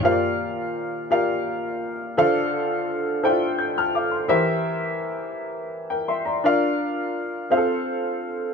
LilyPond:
<<
  \new Staff \with { instrumentName = "Upright piano" } { \time 6/8 \key bes \major \tempo 4. = 56 << { r2. | r2 g'''16 <a'' f'''>16 <f'' d'''>16 c'''16~ | c'''16 r2 <bes' g''>16 <e'' c'''>16 <d'' bes''>16~ | <d'' bes''>16 r2 r8. | } \\ { <f' g' bes' c'' d'' f''>4 r8 <f' g' bes' d'' f''>4 r8 | <f' a' c'' d'' f''>4 r8 <e' f' a' c'' d'' g''>4 r8 | <e' g' bes' c'' e''>4 r2 | <d' f' bes' d'' f''>4 r8 <c' f' aes' a' c'' f''>4 r8 | } >> }
  \new Staff \with { instrumentName = "Upright piano" } { \clef bass \time 6/8 \key bes \major bes,4. r4. | d4. r4. | e4. r4. | r2. | }
>>